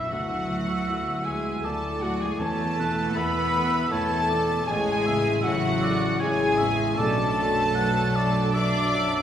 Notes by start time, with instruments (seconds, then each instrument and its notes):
Already playing: felt piano F#2 A3 D4 F#4, harp B2 F#3 B3 D4 F#4 D5 F#5, cello section E3, french horn section B3, viola section E4, flute E5, oboe E5
0.10 double bass section D2, felt piano D2, harp D3, cello section F#3, french horn section E4, viola section F#4, violin section F#5, flute F#5
0.28 harp D4
0.48 felt piano A2, harp F#3
0.87 double bass section D2, felt piano A3 E4 F#4
1.24 felt piano F#3, cello section G#3, viola section G#4, harp E5, violin section G#5, flute G#5
1.62 double bass section D2, cello section A3, felt piano A3 E4 F#4, viola section A4, oboe D5, harp E5, violin section A5, flute A5
1.81 harp F#4
2.01 felt piano A2, cello section F#3, harp E4, viola section F#4, flute F#5, violin section F#5
2.21 harp F#3, cello section G#3, viola section G#4, flute G#5, violin section G#5
2.39 double bass section E2, felt piano E2, harp E3, cello section A3, french horn section B3, viola section A4, oboe C#5, flute A5, violin section A5
2.58 harp B3
2.77 felt piano B2, harp E4, oboe B4
3.15 double bass section E2, felt piano A3 E4 B4, cello section B3, harp B4, viola section B4, oboe E5, flute B5, violin section B5
3.33 harp E5
3.54 felt piano A3
3.91 double bass section E2, cello section A3, felt piano A3 E4 B4, viola section A4, oboe C#5, flute A5, violin section A5
4.10 harp E5
4.30 felt piano B2, oboe D5
4.48 harp E4
4.66 double bass section A1, felt piano A1, harp A2, french horn section C#3 E4, cello section G#3, viola section G#4, oboe C#5, flute G#5, violin section G#5
4.86 harp E3
5.05 felt piano E2, harp C#3, oboe E5
5.24 harp E4
5.43 double bass section A1, cello section F#3, felt piano A3 E4, viola section F#4, oboe E5, flute F#5, violin section F#5
5.47 felt piano C#5
5.63 harp C#6
5.81 felt piano A3, oboe D5, harp E5
6.20 double bass section A1, cello section G#3, felt piano G#3 E4, viola section G#4, oboe C#5, harp E5, flute G#5, violin section G#5
6.24 felt piano C#5
6.40 harp C#5
6.58 felt piano E2, harp E4, oboe E5
6.79 harp C#4
6.97 double bass section B1, felt piano B1, harp B2, french horn section F#3 D4, cello section A3, viola section A4, oboe D5, violin section A5, flute A5
7.17 harp F#3
7.36 felt piano F#2, harp B3
7.55 harp D4
7.75 felt piano F#3 D4 B4, harp F#4, oboe F#5
8.15 felt piano F#3, harp D5, oboe D5
8.35 harp F#5
8.54 felt piano F#3 D4 B4, cello section D4, viola section D5, oboe E5, flute D6, violin section D6
8.74 harp B4
8.94 felt piano F#2, harp D4
9.13 harp B3